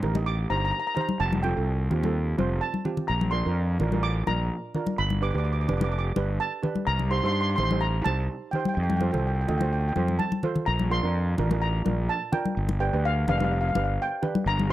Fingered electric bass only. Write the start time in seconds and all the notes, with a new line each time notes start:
0.03 A1
0.50 G1
1.20 F1
1.57 C2
1.91 D#2
2.38 F1
3.09 A#1
3.46 F2
3.80 A1
4.28 A#1
4.99 G1
5.34 D2
5.69 F1
6.16 G1
6.87 C2
7.24 G2
7.58 A1
8.06 C2
8.77 F2
9.14 C2
9.48 D2
9.96 F2
10.68 A#1
11.03 F2
11.39 A1
11.86 A#1
12.57 G1
12.93 D2
13.28 F1
13.76 G1
14.46 G1